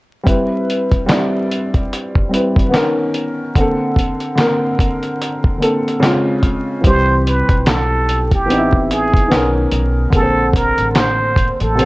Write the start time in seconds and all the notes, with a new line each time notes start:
0.23 G3 C4 E4, kick, closed hi-hat
0.29 B4
0.70 closed hi-hat
0.92 kick, closed hi-hat
1.06 G3 C4 E4, snare, closed hi-hat
1.10 D5, clap
1.51 closed hi-hat
1.74 kick, closed hi-hat
1.93 closed hi-hat
2.15 kick
2.29 G3 C4 E4
2.34 B4, closed hi-hat
2.56 kick, closed hi-hat
2.69 D3 B3 C#4
2.74 D#3 A#4, snare, clap, closed hi-hat
3.14 closed hi-hat
3.55 D3 A#3 C4, kick, closed hi-hat
3.60 A4
3.96 kick, closed hi-hat
4.20 closed hi-hat
4.35 D3 A#3 C4, snare, clap, closed hi-hat
4.41 A#4
4.79 kick, closed hi-hat
5.03 closed hi-hat
5.22 closed hi-hat
5.44 kick
5.58 D3 A#3 C4
5.62 A4, closed hi-hat
5.88 closed hi-hat
6.00 C#3 G#3 C4, snare
6.04 F4, clap, closed hi-hat
6.43 kick, closed hi-hat
6.81 C2 E3 G3 C4, kick, closed hi-hat
6.87 G4 C5
7.27 B4, closed hi-hat
7.49 B1, kick, closed hi-hat
7.66 A4, snare, clap, closed hi-hat
8.09 closed hi-hat
8.31 A1 G4, kick, closed hi-hat
8.46 E3 B3 C4
8.50 D#4, closed hi-hat
8.58 E4
8.73 kick
8.91 G#4, closed hi-hat
9.14 kick, closed hi-hat
9.28 B1 D#3 B3 C#4, snare
9.32 A#4, clap, closed hi-hat
9.72 B1, closed hi-hat
10.10 A#1 D3 A#3 C4, kick, closed hi-hat
10.15 G#4 A4
10.22 C5
10.53 A#4, kick, closed hi-hat
10.78 A1, closed hi-hat
10.95 C5, snare, clap, closed hi-hat
11.36 kick, closed hi-hat
11.60 A1 A4, closed hi-hat
11.75 C3 A#3 C4, closed hi-hat
11.81 D3 C5